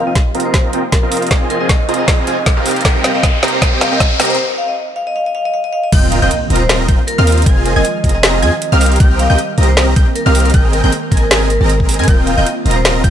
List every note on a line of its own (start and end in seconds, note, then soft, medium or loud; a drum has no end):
0.00 2.63 F3 medium
0.00 1.29 A#3 medium
0.00 1.29 D#4 medium
0.00 1.29 G4 medium
0.00 4.35 C5 medium
0.00 riser medium
0.07 0.15 C4 medium
0.07 0.15 F4 medium
0.07 0.15 A#4 medium
0.07 0.15 D#5 medium
0.07 0.15 G5 medium
0.15 kick medium
0.15 snare soft
0.15 closed hi-hat medium
0.35 0.71 C4 medium
0.35 0.71 F4 medium
0.35 0.71 A#4 medium
0.35 0.71 D#5 medium
0.35 0.71 A#5 medium
0.35 closed hi-hat soft
0.40 closed hi-hat medium
0.45 0.54 C5 medium
0.54 kick medium
0.54 snare medium
0.54 closed hi-hat medium
0.73 0.83 C4 medium
0.73 0.83 F4 medium
0.73 0.83 A#4 medium
0.73 0.83 D#5 medium
0.73 0.83 G5 medium
0.73 closed hi-hat medium
0.92 1.01 A#4 medium
0.92 kick loud
0.92 snare medium
0.92 closed hi-hat medium
1.03 1.29 C4 medium
1.03 1.29 F4 medium
1.03 1.29 A#4 medium
1.03 1.11 A#4 medium
1.03 1.29 D#5 medium
1.03 1.29 F5 loud
1.12 open hi-hat medium
1.17 closed hi-hat medium
1.22 closed hi-hat soft
1.27 closed hi-hat medium
1.31 1.58 C4 medium
1.31 2.64 C4 medium
1.31 4.36 D#4 medium
1.31 1.58 F4 medium
1.31 1.58 G#4 medium
1.31 2.64 G#4 medium
1.31 1.58 G#5 medium
1.31 kick medium
1.31 snare medium
1.31 closed hi-hat medium
1.50 1.59 A#4 medium
1.50 closed hi-hat medium
1.61 1.69 C4 medium
1.61 1.69 F4 medium
1.61 1.69 G#4 medium
1.61 1.89 D#5 medium
1.61 1.69 D#5 medium
1.61 1.69 G#5 medium
1.69 kick medium
1.69 snare medium
1.69 closed hi-hat medium
1.89 2.25 C4 medium
1.89 2.25 F4 medium
1.89 2.25 G#4 medium
1.89 2.25 D#5 medium
1.89 2.25 A#5 medium
1.89 closed hi-hat soft
1.94 closed hi-hat medium
1.99 2.53 D#5 medium
2.08 kick loud
2.08 snare medium
2.08 closed hi-hat medium
2.27 2.37 C4 medium
2.27 2.37 F4 medium
2.27 2.37 G#4 medium
2.27 2.37 D#5 medium
2.27 2.37 G#5 medium
2.27 closed hi-hat medium
2.46 kick loud
2.46 snare medium
2.46 closed hi-hat medium
2.57 2.83 C4 medium
2.57 2.83 G4 medium
2.57 2.83 A#4 medium
2.57 2.83 D#5 medium
2.57 2.83 F5 loud
2.66 4.37 G3 medium
2.66 4.37 C4 medium
2.66 4.37 A#4 medium
2.66 open hi-hat medium
2.71 closed hi-hat medium
2.76 closed hi-hat soft
2.81 closed hi-hat medium
2.85 3.12 C4 medium
2.85 3.12 G4 medium
2.85 3.12 A#4 medium
2.85 3.12 D#5 medium
2.85 3.12 G5 medium
2.85 kick loud
2.85 snare medium
2.85 closed hi-hat medium
3.04 3.12 F5 medium
3.04 snare medium
3.04 closed hi-hat medium
3.14 3.23 C4 medium
3.14 3.23 G4 medium
3.14 3.23 A#4 medium
3.14 3.23 D#5 medium
3.14 3.23 G5 medium
3.23 kick medium
3.23 snare medium
3.23 closed hi-hat medium
3.43 3.60 C4 medium
3.43 3.60 G4 medium
3.43 3.60 A#4 medium
3.43 3.60 D#5 medium
3.43 3.60 A#5 medium
3.43 snare medium
3.43 closed hi-hat soft
3.48 closed hi-hat medium
3.53 3.60 C5 medium
3.62 kick loud
3.62 snare medium
3.62 closed hi-hat medium
3.80 3.89 F5 medium
3.80 snare medium
3.80 closed hi-hat medium
3.91 4.00 C4 medium
3.91 4.00 G4 medium
3.91 4.00 A#4 medium
3.91 4.00 D#5 medium
3.91 4.00 G5 medium
4.00 kick medium
4.00 snare medium
4.00 closed hi-hat medium
4.19 4.37 C4 medium
4.19 4.37 G4 medium
4.19 4.37 A#4 medium
4.19 4.37 D#5 medium
4.19 4.37 A#5 medium
4.19 snare medium
4.19 open hi-hat medium
4.25 closed hi-hat medium
4.30 4.37 C5 medium
4.30 closed hi-hat soft
4.35 closed hi-hat medium
4.58 4.66 F5 medium
4.68 4.76 D#5 medium
4.96 5.05 F5 medium
5.07 5.14 D#5 medium
5.16 5.24 F5 medium
5.26 5.34 D#5 medium
5.35 5.43 F5 medium
5.45 5.53 D#5 medium
5.54 5.62 F5 medium
5.64 5.72 D#5 medium
5.73 5.81 F5 loud
5.83 5.91 D#5 medium
5.92 6.20 D#1 medium
5.92 7.45 D#3 medium
5.92 7.45 G3 medium
5.92 7.45 A#3 medium
5.92 6.20 C4 medium
5.92 13.10 C4 medium
5.92 6.20 F4 medium
5.92 8.78 F4 medium
5.92 6.20 A#4 medium
5.92 6.20 D#5 medium
5.92 6.20 G5 loud
5.92 6.20 G6 loud
5.92 kick loud
5.92 closed hi-hat medium
5.92 crash loud
5.92 impact medium
6.11 6.20 F5 medium
6.11 closed hi-hat medium
6.22 6.29 D#1 medium
6.22 6.31 C4 medium
6.22 6.31 F4 medium
6.22 6.31 A#4 medium
6.22 6.31 D#5 medium
6.22 6.31 G5 medium
6.22 6.31 G6 medium
6.31 closed hi-hat medium
6.50 6.87 D#1 loud
6.50 6.87 C4 medium
6.50 6.87 F4 medium
6.50 6.87 A#4 medium
6.50 6.87 D#5 medium
6.50 6.87 A#5 medium
6.50 6.87 A#6 medium
6.50 closed hi-hat medium
6.56 closed hi-hat medium
6.60 6.69 C5 medium
6.69 snare loud
6.69 closed hi-hat medium
6.88 6.97 D#1 loud
6.88 6.99 C4 medium
6.88 6.99 F4 medium
6.88 6.99 A#4 medium
6.88 6.99 D#5 medium
6.88 6.99 G5 medium
6.88 6.99 G6 medium
6.88 kick loud
6.88 closed hi-hat medium
7.07 7.16 A#4 loud
7.07 closed hi-hat medium
7.18 7.45 D#2 loud
7.18 7.44 C4 medium
7.18 7.44 F4 medium
7.18 7.27 A#4 medium
7.18 7.44 A#4 medium
7.18 7.44 D#5 medium
7.18 7.44 F5 loud
7.18 7.44 F6 loud
7.27 open hi-hat medium
7.32 closed hi-hat medium
7.38 closed hi-hat medium
7.42 closed hi-hat medium
7.46 7.74 F1 loud
7.46 13.10 D#3 medium
7.46 8.80 F3 medium
7.46 8.80 G#3 medium
7.46 7.74 C4 medium
7.46 7.74 G#4 medium
7.46 7.74 D#5 medium
7.46 7.74 G#6 loud
7.46 kick loud
7.46 closed hi-hat medium
7.66 7.74 A#4 medium
7.66 closed hi-hat medium
7.76 7.83 F1 medium
7.76 7.85 C4 medium
7.76 7.85 F4 medium
7.76 7.85 G#4 medium
7.76 7.84 D#5 medium
7.76 8.04 D#5 medium
7.76 7.85 G#5 loud
7.76 7.84 G#6 medium
7.85 closed hi-hat medium
8.04 8.44 F1 loud
8.04 8.40 C4 medium
8.04 8.40 F4 medium
8.04 8.40 G#4 medium
8.04 8.40 D#5 medium
8.04 8.40 A#5 medium
8.04 8.40 A#6 loud
8.04 kick medium
8.04 closed hi-hat medium
8.09 closed hi-hat medium
8.15 8.68 D#5 medium
8.23 snare loud
8.23 closed hi-hat medium
8.42 8.50 F2 loud
8.42 8.53 C4 medium
8.42 8.53 F4 medium
8.42 8.53 G#4 medium
8.42 8.53 D#5 medium
8.42 8.53 G#5 medium
8.42 8.53 G#6 medium
8.42 closed hi-hat medium
8.62 closed hi-hat medium
8.72 8.99 C2 medium
8.72 8.98 C4 medium
8.72 8.98 G4 medium
8.72 8.98 A#4 medium
8.72 8.98 D#5 medium
8.72 8.98 F5 loud
8.72 8.98 F6 loud
8.81 10.52 G3 medium
8.81 13.10 A#3 medium
8.81 open hi-hat medium
8.86 closed hi-hat medium
8.92 closed hi-hat soft
8.96 closed hi-hat medium
9.00 9.28 C2 loud
9.00 9.28 C4 medium
9.00 9.28 G4 medium
9.00 9.28 A#4 medium
9.00 9.28 D#5 medium
9.00 9.28 G5 loud
9.00 9.27 G6 loud
9.00 kick loud
9.00 closed hi-hat medium
9.19 9.28 F5 medium
9.19 closed hi-hat medium
9.30 9.37 C2 medium
9.30 9.38 C4 medium
9.30 9.38 G4 medium
9.30 9.38 A#4 medium
9.30 9.38 D#5 medium
9.30 9.38 G5 medium
9.30 9.38 G6 medium
9.38 closed hi-hat medium
9.58 9.95 C2 loud
9.58 9.94 C4 medium
9.58 9.94 G4 medium
9.58 9.94 A#4 medium
9.58 9.94 D#5 medium
9.58 9.94 A#5 medium
9.58 9.94 A#6 medium
9.58 closed hi-hat soft
9.63 closed hi-hat medium
9.69 9.77 C5 medium
9.77 snare loud
9.77 closed hi-hat medium
9.96 10.04 C2 loud
9.96 10.06 C4 medium
9.96 10.06 G4 medium
9.96 10.06 D#5 medium
9.96 10.06 G5 loud
9.96 10.06 G6 medium
9.96 kick loud
9.96 closed hi-hat medium
10.15 10.24 A#4 medium
10.15 closed hi-hat medium
10.26 10.52 C2 medium
10.26 10.52 C4 medium
10.26 10.52 G4 medium
10.26 10.52 A#4 medium
10.26 10.52 D#5 medium
10.26 10.52 F5 loud
10.26 10.52 F6 loud
10.35 open hi-hat medium
10.40 closed hi-hat medium
10.45 10.54 A#4 medium
10.45 closed hi-hat soft
10.50 closed hi-hat medium
10.54 10.82 G#1 loud
10.54 12.06 G#3 medium
10.54 10.81 G6 loud
10.54 kick loud
10.54 closed hi-hat medium
10.73 10.84 A#4 medium
10.73 closed hi-hat medium
10.84 10.90 G#1 medium
10.84 10.92 C4 medium
10.84 10.92 G#4 medium
10.84 10.92 A#4 medium
10.84 10.92 D#5 medium
10.84 10.92 G5 medium
10.84 10.92 G6 medium
10.92 closed hi-hat medium
11.11 11.59 G#1 loud
11.11 11.48 C4 medium
11.11 11.48 G#4 medium
11.11 11.20 A#4 medium
11.11 11.48 A#4 medium
11.11 11.48 D#5 medium
11.11 11.48 G#5 loud
11.11 11.48 G#6 medium
11.11 kick medium
11.11 closed hi-hat soft
11.17 closed hi-hat medium
11.22 11.28 A#4 medium
11.30 11.37 A#4 medium
11.30 snare loud
11.30 closed hi-hat medium
11.50 11.57 A#4 medium
11.50 closed hi-hat medium
11.61 12.01 G#1 loud
11.61 11.97 C4 medium
11.61 11.97 G#4 medium
11.61 11.66 A#4 medium
11.61 11.97 A#4 medium
11.61 11.97 D#5 medium
11.61 11.97 A#5 medium
11.61 11.97 A#6 medium
11.69 closed hi-hat medium
11.80 kick medium
11.89 open hi-hat medium
11.94 closed hi-hat medium
11.99 12.06 G#2 medium
11.99 12.06 C4 medium
11.99 12.06 G#4 medium
11.99 12.12 A#4 medium
11.99 12.06 A#4 medium
11.99 12.06 D#5 medium
11.99 12.06 G#5 loud
11.99 12.06 G#6 medium
11.99 closed hi-hat soft
12.04 closed hi-hat medium
12.08 12.36 D#1 medium
12.08 13.10 G3 medium
12.08 12.35 C4 medium
12.08 13.10 F4 medium
12.08 12.35 F4 medium
12.08 12.35 A#4 medium
12.08 12.35 D#5 medium
12.08 12.35 G6 medium
12.08 kick loud
12.08 closed hi-hat medium
12.27 12.35 F5 medium
12.27 closed hi-hat medium
12.37 12.44 D#1 medium
12.37 12.46 C4 medium
12.37 12.46 F4 medium
12.37 12.46 A#4 medium
12.37 12.46 D#5 medium
12.37 12.46 G5 medium
12.37 12.46 G6 medium
12.46 closed hi-hat medium
12.65 13.02 D#1 loud
12.65 13.02 C4 medium
12.65 13.02 F4 medium
12.65 13.02 A#4 medium
12.65 13.02 D#5 medium
12.65 13.02 A#5 medium
12.65 13.02 A#6 medium
12.65 closed hi-hat soft
12.71 closed hi-hat medium
12.76 12.84 C5 medium
12.85 snare loud
12.85 closed hi-hat medium
13.04 13.10 D#1 medium
13.04 13.10 C4 medium
13.04 13.10 F4 medium
13.04 13.10 A#4 medium
13.04 13.10 D#5 medium
13.04 13.10 G5 loud
13.04 13.10 G6 medium
13.04 kick loud
13.04 closed hi-hat medium